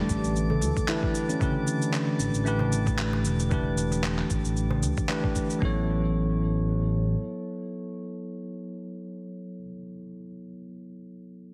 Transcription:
0.00 1.41 D3 medium
0.00 0.87 E3 medium
0.00 0.49 G3 medium
0.00 0.88 A3 medium
0.00 0.86 D4 medium
0.00 5.63 D4 medium
0.00 0.89 G4 medium
0.00 0.89 B4 medium
0.00 5.63 D5 medium
0.09 0.18 A1 loud
0.09 kick medium
0.09 shaker medium
0.24 0.64 A1 medium
0.24 shaker soft
0.36 shaker soft
0.50 0.61 A4 medium
0.50 darbuka dum medium
0.61 0.71 D2 loud
0.61 darbuka ka medium
0.61 shaker medium
0.77 kick medium
0.77 shaker soft
0.87 1.37 E3 medium
0.87 1.38 A3 medium
0.87 1.38 D4 medium
0.87 1.02 E4 medium
0.87 1.38 G4 medium
0.87 1.38 B4 loud
0.87 clap loud
0.87 shaker soft
1.03 kick loud
1.14 darbuka ka soft
1.14 shaker medium
1.29 1.40 C#4 medium
1.29 shaker soft
1.39 2.43 D3 medium
1.39 2.42 E3 medium
1.39 2.43 A3 medium
1.39 2.44 G4 medium
1.39 2.44 B4 medium
1.39 kick loud
1.39 darbuka dum loud
1.39 shaker soft
1.66 darbuka tek soft
1.66 shaker medium
1.82 shaker soft
1.94 clap medium
1.94 shaker soft
2.20 2.28 A1 loud
2.20 shaker medium
2.34 3.27 A1 medium
2.34 shaker soft
2.44 3.47 E3 medium
2.44 3.48 A3 medium
2.44 3.48 D4 medium
2.44 3.49 G4 medium
2.44 shaker soft
2.48 3.49 B4 medium
2.59 darbuka tek medium
2.59 darbuka dum medium
2.72 shaker medium
2.86 kick loud
2.86 darbuka ka soft
2.86 darbuka tek medium
2.86 shaker soft
2.99 clap medium
2.99 shaker soft
3.13 darbuka tek medium
3.25 4.23 E1 medium
3.25 shaker medium
3.39 darbuka ka soft
3.39 shaker soft
3.50 5.05 E3 medium
3.50 5.06 A3 medium
3.50 5.07 D4 medium
3.50 5.07 G4 medium
3.50 kick loud
3.50 darbuka dum medium
3.50 shaker soft
3.54 5.08 B4 medium
3.78 darbuka ka soft
3.78 shaker medium
3.92 darbuka tek soft
3.92 shaker soft
4.04 clap medium
4.04 shaker soft
4.19 clap soft
4.30 4.39 A1 loud
4.30 kick medium
4.30 shaker medium
4.45 4.85 A1 medium
4.45 shaker soft
4.57 shaker soft
4.70 darbuka tek medium
4.70 darbuka dum medium
4.83 4.92 D2 medium
4.83 darbuka ka soft
4.83 shaker medium
4.97 kick medium
4.97 shaker soft
5.09 5.59 E3 medium
5.09 5.59 A3 medium
5.09 5.59 D4 medium
5.09 5.59 G4 medium
5.09 5.60 B4 medium
5.09 clap medium
5.09 shaker soft
5.24 kick loud
5.24 darbuka ka soft
5.35 kick medium
5.35 darbuka ka soft
5.35 shaker medium
5.50 shaker soft
5.59 7.16 A1 medium
5.59 9.57 F#3 medium
5.59 9.58 B3 medium
5.59 9.60 E4 medium
5.59 kick loud
5.64 9.61 A4 medium
5.64 9.63 C#5 medium

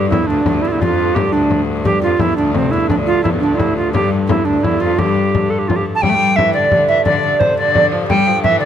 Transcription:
0.00 0.12 G2 medium
0.00 1.85 G2 medium
0.00 1.86 D3 medium
0.00 0.13 G3 medium
0.09 0.28 E2 medium
0.09 0.30 E3 medium
0.09 0.28 E4 medium
0.09 frame drum medium
0.27 0.45 D2 medium
0.27 0.46 D3 medium
0.27 0.63 D4 medium
0.27 frame drum soft
0.46 0.65 D2 medium
0.46 0.64 D3 medium
0.46 frame drum medium
0.62 0.71 E2 medium
0.62 0.82 E3 medium
0.62 0.69 E4 medium
0.68 0.82 E4 medium
0.68 0.73 F4 medium
0.72 0.76 E2 medium
0.80 1.18 F2 medium
0.80 1.18 F3 medium
0.80 1.16 F4 medium
0.80 frame drum medium
0.99 frame drum soft
1.15 1.33 G2 medium
1.15 1.34 G3 medium
1.15 1.34 G4 medium
1.15 frame drum medium
1.32 1.87 D2 medium
1.32 1.87 D3 medium
1.32 1.61 D4 medium
1.32 frame drum soft
1.51 frame drum medium
1.67 frame drum soft
1.84 6.03 G2 medium
1.84 2.02 G2 medium
1.84 6.03 D3 medium
1.84 2.03 G3 medium
1.84 2.01 G4 medium
1.84 frame drum medium
2.02 2.19 F2 medium
2.02 2.16 F3 medium
2.02 2.21 F4 medium
2.17 2.21 F3 soft
2.17 2.36 E4 medium
2.17 frame drum medium
2.21 2.37 E2 medium
2.21 2.38 E3 medium
2.37 2.57 D2 medium
2.37 2.73 D3 medium
2.37 2.53 D4 medium
2.37 frame drum soft
2.54 2.72 C3 medium
2.54 2.72 C4 medium
2.54 frame drum medium
2.71 2.83 E2 medium
2.71 2.91 E3 medium
2.71 2.88 E4 medium
2.71 frame drum soft
2.83 2.92 E2 medium
2.89 3.25 D2 medium
2.89 3.25 D3 medium
2.89 2.95 D4 medium
2.89 frame drum medium
3.06 3.23 F4 medium
3.23 3.44 E2 medium
3.23 3.43 E3 medium
3.23 3.29 E4 medium
3.23 frame drum medium
3.40 3.96 D2 medium
3.40 3.60 D3 medium
3.40 3.56 D4 medium
3.40 frame drum soft
3.55 3.76 E4 medium
3.55 3.59 F4 medium
3.59 3.96 E3 medium
3.59 frame drum medium
3.77 3.92 F4 medium
3.77 frame drum soft
3.92 4.12 G2 medium
3.92 4.10 G3 medium
3.92 4.09 G4 medium
3.92 frame drum medium
4.27 4.37 E2 medium
4.27 4.45 E3 medium
4.27 4.46 E4 medium
4.27 frame drum medium
4.45 4.63 D2 medium
4.45 4.80 D3 medium
4.45 4.65 D4 medium
4.45 frame drum soft
4.63 4.81 E2 medium
4.63 4.82 E4 medium
4.63 frame drum medium
4.80 4.98 F2 medium
4.80 4.98 F3 medium
4.80 5.00 F4 medium
4.80 frame drum soft
4.99 5.47 G2 medium
4.99 5.46 G3 medium
4.99 5.52 G4 medium
4.99 frame drum medium
5.17 frame drum soft
5.35 frame drum medium
5.50 5.60 A4 medium
5.59 5.69 G4 medium
5.68 5.77 F4 medium
5.68 frame drum medium
5.76 5.85 G4 medium
5.95 6.03 A5 medium
6.00 8.65 G2 medium
6.00 8.65 D3 medium
6.00 6.11 G3 medium
6.00 6.33 G4 medium
6.00 6.37 G5 loud
6.00 frame drum medium
6.09 6.16 A3 medium
6.15 6.36 G3 medium
6.36 6.57 E3 medium
6.36 6.53 E4 medium
6.36 6.53 E5 medium
6.36 frame drum medium
6.53 6.72 D3 medium
6.53 6.86 D4 medium
6.53 6.86 D5 medium
6.53 frame drum soft
6.71 6.88 D3 medium
6.71 frame drum medium
6.88 6.97 E3 medium
6.88 7.05 E4 medium
6.88 7.04 E5 medium
6.88 frame drum soft
7.05 7.22 D3 medium
7.05 7.22 D4 medium
7.05 7.41 D5 loud
7.05 frame drum medium
7.23 7.39 D3 medium
7.23 7.39 D4 medium
7.39 7.47 C3 medium
7.39 7.57 C4 medium
7.39 7.57 C5 medium
7.39 frame drum medium
7.46 7.57 C3 medium
7.46 7.51 D3 medium
7.57 7.93 D3 medium
7.57 8.09 D4 medium
7.57 7.86 D5 medium
7.57 frame drum soft
7.75 frame drum medium
7.92 8.08 F3 medium
7.92 frame drum soft
8.09 8.29 G3 medium
8.09 8.42 G4 medium
8.09 8.41 G5 loud
8.09 frame drum medium
8.27 8.43 F3 medium
8.43 8.62 E3 medium
8.43 8.62 E4 medium
8.43 8.59 E5 medium
8.43 frame drum medium
8.59 8.65 D3 medium
8.59 8.65 D4 medium
8.59 8.65 D5 medium
8.59 frame drum soft

